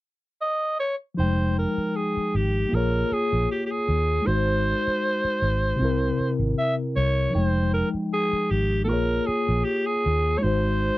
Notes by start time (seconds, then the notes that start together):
0.41 D#5
0.80 C#5
1.14 F3 D#4
1.19 F1 C5 G5
1.23 G#3
1.58 A#4
1.78 muted fingered electric bass stroke
1.96 G#4
2.17 muted fingered electric bass stroke
2.35 G#1 G4
2.69 A#3 F4
2.73 A#1 G#4 A#4 C#5
3.12 G#4, muted fingered electric bass stroke
3.33 A#1
3.51 G4
3.66 G4
3.71 G#4
3.89 D#2
4.22 G#3 D#4
4.27 G#1 F#4 C5
4.87 muted fingered electric bass stroke
5.24 muted fingered electric bass stroke
5.42 G#1
5.76 C3 C4
5.81 C2 E4 A#4
6.20 muted fingered electric bass stroke
6.39 G#1
6.58 E5
6.96 C2 C#5
7.30 F3 D#4
7.34 F1 G#3 C5 G5
7.74 A#4
7.94 muted fingered electric bass stroke
8.13 G#4
8.33 muted fingered electric bass stroke
8.51 G#1 G4
8.84 A#3 F4 A4
8.88 A#1 G#4 A#4
8.93 C#5
9.27 G#4, muted fingered electric bass stroke
9.49 A#1
9.65 G4
9.86 G#4
10.06 D#2
10.38 G#3 D#4 C#5
10.42 G#1 F#4 C5